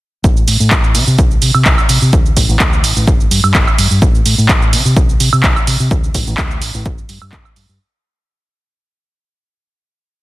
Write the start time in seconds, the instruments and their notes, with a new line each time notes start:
0.24 fingered electric bass A1, kick, shaker
0.37 shaker
0.48 fingered electric bass A2, open hi-hat, shaker
0.60 fingered electric bass A2, shaker
0.71 fingered electric bass A1, kick, clap, shaker
0.84 shaker
0.95 fingered electric bass C3, open hi-hat, shaker
1.07 fingered electric bass C3, shaker
1.18 fingered electric bass C2, kick, shaker
1.31 shaker
1.42 fingered electric bass C3, open hi-hat, shaker
1.54 fingered electric bass C3, high woodblock, shaker
1.65 fingered electric bass C2, kick, clap, shaker
1.78 high woodblock, shaker
1.89 fingered electric bass C3, open hi-hat, shaker
2.02 fingered electric bass C3, shaker
2.13 fingered electric bass D2, kick, shaker
2.26 shaker
2.37 fingered electric bass A1, kick, open hi-hat, shaker
2.49 fingered electric bass A1, shaker
2.60 fingered electric bass D2, kick, clap, shaker
2.73 shaker
2.84 fingered electric bass A1, open hi-hat, shaker
2.96 fingered electric bass A1, shaker
3.07 fingered electric bass G1, kick, shaker
3.20 shaker
3.31 fingered electric bass G2, open hi-hat, shaker
3.44 fingered electric bass G2, high woodblock, shaker
3.54 fingered electric bass G1, kick, clap, shaker
3.67 high woodblock, shaker
3.78 fingered electric bass G2, open hi-hat, shaker
3.91 fingered electric bass G2, shaker
4.02 fingered electric bass A1, kick, shaker
4.15 shaker
4.26 fingered electric bass A2, open hi-hat, shaker
4.38 fingered electric bass A2, shaker
4.49 fingered electric bass A1, kick, clap, shaker
4.62 shaker
4.73 fingered electric bass C3, open hi-hat, shaker
4.85 fingered electric bass C3, shaker
4.96 fingered electric bass C2, kick, shaker
5.09 shaker
5.20 fingered electric bass C3, open hi-hat, shaker
5.33 fingered electric bass C3, high woodblock, shaker
5.43 fingered electric bass C2, kick, clap, shaker
5.56 high woodblock, shaker
5.67 fingered electric bass C3, open hi-hat, shaker
5.80 fingered electric bass C3, shaker
5.91 fingered electric bass D2, kick, shaker
6.04 shaker
6.14 fingered electric bass A1, kick, open hi-hat, shaker
6.27 fingered electric bass A1, shaker
6.38 fingered electric bass D2, kick, clap, shaker
6.51 shaker
6.62 fingered electric bass A1, open hi-hat, shaker
6.74 fingered electric bass A1, shaker
6.86 fingered electric bass G1, kick, shaker
6.98 shaker
7.09 fingered electric bass G2, open hi-hat, shaker
7.22 fingered electric bass G2, high woodblock, shaker
7.32 fingered electric bass G1, kick, clap, shaker
7.45 high woodblock, shaker
7.56 fingered electric bass G2, open hi-hat, shaker
7.69 fingered electric bass G2, shaker